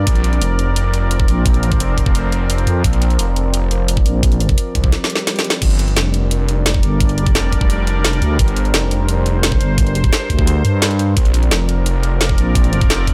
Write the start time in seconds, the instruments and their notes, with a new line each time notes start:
Already playing: analog synth pad A#4 D5
0.07 detuned saw bass A#1, analog synth pad F3 C4, kick, closed hi-hat
0.16 closed hi-hat
0.24 closed hi-hat
0.33 closed hi-hat
0.42 detuned saw bass F1, closed hi-hat
0.59 closed hi-hat
0.76 closed hi-hat
0.94 closed hi-hat
1.11 closed hi-hat
1.20 kick
1.28 fm bass A#1, closed hi-hat
1.46 kick, closed hi-hat
1.54 closed hi-hat
1.63 closed hi-hat
1.72 kick, closed hi-hat
1.80 detuned saw bass F1, closed hi-hat
1.98 kick, closed hi-hat
2.06 kick
2.15 closed hi-hat
2.32 closed hi-hat
2.50 closed hi-hat
2.58 closed hi-hat
2.67 fm bass F2, closed hi-hat
2.84 detuned saw bass A#1, kick, closed hi-hat
2.93 closed hi-hat
3.02 closed hi-hat
3.10 closed hi-hat
3.19 detuned saw bass F1, closed hi-hat
3.36 closed hi-hat
3.54 closed hi-hat
3.71 closed hi-hat
3.88 closed hi-hat
3.97 kick
4.06 fm bass A#1, closed hi-hat
4.23 kick, closed hi-hat
4.32 closed hi-hat
4.40 closed hi-hat
4.49 kick, closed hi-hat
4.58 closed hi-hat
4.75 detuned saw bass C2, kick, closed hi-hat
4.84 kick
4.92 snare, closed hi-hat, swell
5.04 snare
5.10 closed hi-hat
5.16 snare, closed hi-hat
5.27 snare, closed hi-hat
5.36 snare, closed hi-hat
5.44 closed hi-hat
5.50 snare
5.62 detuned saw bass G1, analog synth pad G3 D4 A#4 D5, kick, closed hi-hat, crash
5.70 closed hi-hat
5.79 closed hi-hat
5.88 closed hi-hat
5.96 detuned saw bass F1, snare, closed hi-hat
6.14 closed hi-hat
6.31 closed hi-hat
6.49 closed hi-hat
6.66 snare, closed hi-hat
6.74 kick
6.83 fm bass G1, closed hi-hat
7.00 kick, closed hi-hat
7.09 closed hi-hat
7.18 closed hi-hat
7.26 kick, closed hi-hat
7.35 detuned saw bass F1, snare, closed hi-hat
7.53 kick, closed hi-hat
7.61 kick
7.70 closed hi-hat
7.87 closed hi-hat
8.05 snare, closed hi-hat
8.13 closed hi-hat
8.22 fm bass D2, closed hi-hat
8.39 detuned saw bass G1, analog synth pad C5, kick, closed hi-hat
8.48 closed hi-hat
8.57 closed hi-hat
8.65 closed hi-hat
8.74 detuned saw bass F1, snare, closed hi-hat
8.91 closed hi-hat
9.09 closed hi-hat
9.26 closed hi-hat
9.43 snare, closed hi-hat
9.52 kick
9.61 fm bass G1, closed hi-hat
9.78 kick, closed hi-hat
9.87 closed hi-hat
9.95 closed hi-hat
10.04 kick, closed hi-hat
10.13 snare, closed hi-hat
10.30 fm bass D2, kick, closed hi-hat
10.39 kick
10.47 closed hi-hat
10.65 fm bass G2, closed hi-hat
10.82 snare, closed hi-hat
10.91 closed hi-hat
10.99 closed hi-hat
11.17 detuned saw bass A#1, analog synth pad F3 C4 A#4 D5, kick, closed hi-hat
11.25 closed hi-hat
11.34 closed hi-hat
11.43 closed hi-hat
11.51 detuned saw bass F1, snare, closed hi-hat
11.69 closed hi-hat
11.86 closed hi-hat
12.03 closed hi-hat
12.21 snare, closed hi-hat
12.29 kick
12.38 fm bass A#1, closed hi-hat
12.55 kick, closed hi-hat
12.64 closed hi-hat
12.73 closed hi-hat
12.81 kick, closed hi-hat
12.90 detuned saw bass F1, snare, closed hi-hat
13.07 kick, closed hi-hat